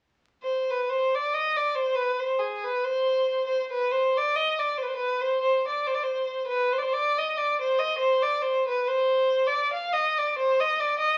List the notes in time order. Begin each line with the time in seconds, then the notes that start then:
0.43 C5
0.70 B4
0.89 C5
1.15 D5
1.33 D#5
1.56 D5
1.75 C5
1.95 B4
2.20 C5
2.39 G#4
2.64 B4
2.84 C5
3.46 C5
3.72 B4
3.91 C5
4.17 D5
4.35 D#5
4.59 D5
4.78 C5
4.82 B4
4.88 C5
4.95 B4
5.21 C5
5.41 C5
5.67 D5
5.87 C5
5.94 D5
6.03 C5
6.47 B4
6.73 C5
6.78 D5
6.82 C5
6.93 D5
7.18 D#5
7.37 D5
7.60 C5
7.79 D#5
7.98 C5
8.22 D5
8.42 C5
8.67 B4
8.87 C5
9.47 D5
9.73 F5
9.93 D#5
10.18 D5
10.38 C5
10.60 D#5
10.80 D5
10.98 D#5